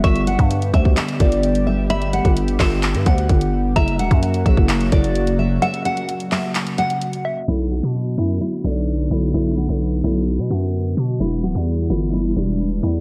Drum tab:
HH |xxxxxxx-xxxxxx--|xxxxxxo-xxxxxx--|xxxxxxx-xxxxxx--|xxxxxxo-xxxxxx--|
CP |--------x-------|------x-x-------|--------x-------|------x-x-------|
BD |o--o--oo--o-----|---o--o---o-o---|o--o--oo--o-----|----------------|

HH |----------------|----------------|----------------|
CP |----------------|----------------|----------------|
BD |----------------|----------------|----------------|